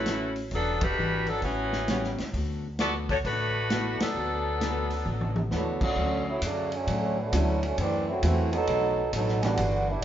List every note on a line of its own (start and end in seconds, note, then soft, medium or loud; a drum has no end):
0.00 0.48 A1 medium
0.00 0.49 F#3 medium
0.00 0.34 A3 medium
0.00 0.50 A3 medium
0.00 0.50 C#4 soft
0.00 0.34 E4 medium
0.00 0.50 E4 medium
0.00 0.34 F#4 medium
0.00 0.34 B4 medium
0.06 0.39 F#2 medium
0.06 0.39 E3 medium
0.06 0.39 A3 medium
0.06 0.40 C#4 medium
0.06 snare medium
0.06 closed hi-hat medium
0.36 open hi-hat soft
0.51 0.94 E1 medium
0.51 0.84 E3 soft
0.51 0.81 F#3 medium
0.51 0.84 G3 soft
0.51 0.81 B3 medium
0.51 0.81 D4 medium
0.51 0.85 D4 soft
0.51 0.85 F#4 soft
0.51 0.81 A4 loud
0.51 kick soft
0.51 open hi-hat soft
0.81 1.28 G3 medium
0.81 1.27 D4 medium
0.81 1.28 F#4 medium
0.81 1.28 B4 loud
0.81 kick medium
0.81 ride medium
0.98 1.40 G#1 medium
0.98 1.30 E3 medium
0.98 1.30 G3 medium
0.98 1.30 D4 medium
0.98 1.31 F#4 medium
1.26 1.43 F#3 medium
1.26 1.42 B3 medium
1.26 1.43 D4 medium
1.26 1.43 A4 medium
1.26 open hi-hat soft
1.42 2.14 A1 medium
1.42 1.75 A2 soft
1.42 2.15 E3 medium
1.42 1.76 G3 soft
1.42 2.15 B3 medium
1.42 2.15 C#4 medium
1.42 2.15 F#4 medium
1.42 kick soft
1.42 open hi-hat soft
1.46 1.76 C#4 soft
1.46 1.76 F#4 medium
1.73 snare soft
1.88 2.21 A2 medium
1.88 2.16 G3 medium
1.88 2.21 G3 medium
1.88 2.16 B3 medium
1.88 2.17 C#4 medium
1.88 2.21 C#4 medium
1.88 2.17 F#4 medium
1.88 2.22 F#4 medium
1.88 snare medium
1.88 closed hi-hat medium
2.04 snare soft
2.18 2.33 A2 medium
2.18 snare soft
2.18 open hi-hat soft
2.34 3.20 D2 medium
2.34 2.66 D3 medium
2.34 2.67 A3 soft
2.34 2.67 B3 medium
2.34 2.67 F#4 medium
2.34 kick soft
2.34 open hi-hat soft
2.79 3.11 D3 medium
2.79 3.12 A3 medium
2.79 2.93 B3 medium
2.79 3.12 B3 medium
2.79 2.93 F#4 medium
2.79 3.12 F#4 medium
2.79 2.93 A4 medium
2.79 2.93 D5 medium
2.79 snare medium
2.79 closed hi-hat medium
3.09 3.17 A3 medium
3.09 3.17 D4 medium
3.09 3.17 F#4 medium
3.09 3.17 C#5 medium
3.09 kick medium
3.09 open hi-hat soft
3.25 3.96 A1 medium
3.25 3.57 D3 soft
3.25 3.97 A3 medium
3.25 3.57 A3 soft
3.25 3.57 B3 soft
3.25 3.97 D4 medium
3.25 3.97 F#4 medium
3.25 3.58 F#4 soft
3.25 3.97 B4 loud
3.25 kick soft
3.25 open hi-hat soft
3.70 4.02 D3 medium
3.70 3.97 A3 medium
3.70 4.02 A3 medium
3.70 3.98 B3 medium
3.70 4.03 B3 medium
3.70 3.98 E4 medium
3.70 3.98 F#4 medium
3.70 4.03 F#4 medium
3.70 snare medium
3.70 closed hi-hat medium
4.00 5.51 F#3 medium
4.00 5.51 B3 medium
4.00 5.51 D4 medium
4.00 5.52 A4 medium
4.00 muted upright bass stroke soft
4.00 snare medium
4.00 ride medium
4.15 5.02 D2 medium
4.15 4.47 D3 soft
4.15 4.48 A3 soft
4.15 4.48 B3 soft
4.15 4.48 F#4 soft
4.60 4.92 D3 medium
4.60 4.93 A3 medium
4.60 4.93 B3 medium
4.60 4.93 F#4 medium
4.60 snare medium
4.60 closed hi-hat medium
4.90 open hi-hat soft
5.06 5.48 A1 medium
5.06 5.38 D3 soft
5.06 5.38 A3 medium
5.06 5.39 B3 medium
5.06 5.39 F#4 medium
5.06 high tom soft
5.21 high tom medium
5.36 high tom medium
5.51 5.93 D#2 medium
5.51 5.83 D3 medium
5.51 5.81 F#3 medium
5.51 5.78 A3 soft
5.51 5.84 A3 medium
5.51 5.79 B3 soft
5.51 5.84 B3 medium
5.51 5.81 B3 medium
5.51 5.80 D4 medium
5.51 5.79 E4 soft
5.51 5.79 F#4 medium
5.51 5.84 F#4 medium
5.51 5.81 A4 medium
5.51 snare medium
5.81 6.24 D3 medium
5.81 6.24 A3 medium
5.81 6.24 C#4 medium
5.81 6.24 F#4 loud
5.81 kick medium
5.81 crash medium
5.96 6.40 D2 medium
5.96 6.29 D3 soft
5.96 6.29 F#3 soft
5.96 6.29 A3 soft
5.96 6.30 C#4 soft
5.96 kick soft
6.28 6.42 F#3 medium
6.28 6.42 A3 medium
6.28 6.42 C#4 medium
6.28 6.42 E4 medium
6.42 6.86 F#2 medium
6.42 6.71 C#3 medium
6.42 6.74 D3 medium
6.42 6.74 F#3 medium
6.42 6.71 F#3 medium
6.42 6.74 A3 medium
6.42 6.71 A3 medium
6.42 6.75 C#4 medium
6.42 6.71 D4 medium
6.42 kick soft
6.42 hi-hat pedal medium
6.42 ride medium
6.72 7.19 D3 medium
6.72 7.18 F#3 medium
6.72 7.19 A3 medium
6.72 7.19 C#4 medium
6.72 ride soft
6.87 7.31 A2 medium
6.87 7.19 D3 soft
6.87 7.20 F#3 soft
6.87 7.20 A3 medium
6.87 7.20 C#4 medium
6.87 kick soft
6.87 ride medium
7.20 7.63 D3 medium
7.20 7.63 F#3 medium
7.20 7.63 A3 medium
7.20 7.64 B3 medium
7.32 7.76 D2 medium
7.32 7.60 D3 medium
7.32 7.65 D3 medium
7.32 7.60 F#3 medium
7.32 7.65 F#3 medium
7.32 7.60 A3 medium
7.32 7.65 A3 medium
7.32 7.61 C#4 medium
7.32 7.66 C#4 medium
7.32 7.61 E4 medium
7.32 kick soft
7.32 hi-hat pedal medium
7.32 ride medium
7.63 7.79 D3 medium
7.63 7.79 F#3 medium
7.63 7.78 A3 medium
7.63 7.79 C#4 medium
7.63 ride soft
7.78 8.22 F#2 medium
7.78 8.10 F#2 soft
7.78 8.07 E3 medium
7.78 8.10 E3 soft
7.78 8.07 G3 medium
7.78 8.10 A3 medium
7.78 8.06 C4 medium
7.78 8.11 C4 medium
7.78 8.07 D4 medium
7.78 kick soft
7.78 ride medium
8.09 8.23 F#3 medium
8.09 8.23 A3 medium
8.09 8.23 C4 medium
8.09 8.23 E4 medium
8.23 8.67 E2 medium
8.23 8.55 F#2 medium
8.23 8.50 E3 medium
8.23 8.55 E3 medium
8.23 8.54 E3 medium
8.23 8.51 F#3 medium
8.23 8.54 A3 medium
8.23 8.55 A3 medium
8.23 8.51 A3 medium
8.23 8.54 C4 medium
8.23 8.55 C4 medium
8.23 8.51 C4 medium
8.23 8.51 E4 medium
8.23 8.54 F#4 medium
8.23 kick soft
8.23 hi-hat pedal medium
8.23 ride medium
8.53 9.10 F#3 medium
8.53 9.10 B3 medium
8.53 9.10 D#4 medium
8.53 9.10 A4 loud
8.53 ride soft
8.67 9.12 B1 medium
8.67 9.00 B2 soft
8.67 9.00 F#3 soft
8.67 9.01 A3 medium
8.67 9.01 D#4 medium
8.67 kick soft
8.67 ride medium
9.13 9.57 A1 medium
9.13 9.46 B2 medium
9.13 9.42 F#3 medium
9.13 9.46 F#3 medium
9.13 9.46 A3 medium
9.13 9.42 B3 medium
9.13 9.42 D#4 medium
9.13 9.47 D#4 medium
9.13 9.42 A4 medium
9.13 kick soft
9.13 hi-hat pedal medium
9.13 ride medium
9.28 snare soft
9.43 9.89 D3 medium
9.43 9.58 E3 medium
9.43 9.88 G3 medium
9.43 9.57 G3 medium
9.43 9.88 B3 medium
9.43 9.58 B3 medium
9.43 9.58 D4 medium
9.43 9.89 F#4 loud
9.43 9.58 F#4 medium
9.43 snare soft
9.43 ride soft
9.57 10.02 G1 medium
9.57 9.90 E3 medium
9.57 9.91 G3 soft
9.57 9.91 D4 soft
9.57 9.92 F#4 medium
9.57 kick soft
9.57 ride medium
9.89 10.02 G3 medium
9.89 10.01 B3 medium
9.89 10.02 D4 medium
9.89 10.04 E4 medium